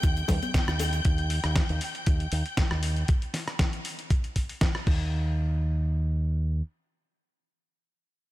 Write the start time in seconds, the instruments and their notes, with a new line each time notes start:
Already playing: string section G5 G6
0.03 fingered electric bass D#2, kick, closed hi-hat, shaker
0.17 closed hi-hat, shaker
0.28 fingered electric bass D#2, kick, open hi-hat, high bongo, low conga, shaker
0.42 closed hi-hat, high conga, shaker
0.54 kick, snare, closed hi-hat, shaker
0.68 fingered electric bass D#2, cross-stick, shaker
0.79 open hi-hat, high bongo, shaker
0.93 closed hi-hat, shaker
1.05 fingered electric bass D#2, kick, closed hi-hat
1.18 closed hi-hat
1.30 open hi-hat
1.44 fingered electric bass D#2, cross-stick, closed hi-hat
1.56 kick, snare, closed hi-hat
1.69 fingered electric bass D#2, closed hi-hat
1.81 open hi-hat
1.95 closed hi-hat
2.06 fingered electric bass D#2, kick, closed hi-hat
2.20 closed hi-hat
2.32 fingered electric bass D#2, open hi-hat
2.46 closed hi-hat
2.57 kick, snare, closed hi-hat
2.71 fingered electric bass D#2, cross-stick
2.83 open hi-hat
2.96 closed hi-hat
3.08 kick, closed hi-hat
3.22 closed hi-hat
3.34 snare, open hi-hat
3.48 cross-stick, closed hi-hat
3.59 kick, snare, closed hi-hat
3.73 closed hi-hat
3.85 open hi-hat
3.99 closed hi-hat
4.10 kick, closed hi-hat
4.24 closed hi-hat
4.36 kick, open hi-hat
4.49 open hi-hat
4.61 kick, snare, closed hi-hat
4.75 cross-stick
4.87 fingered electric bass D#2, kick, crash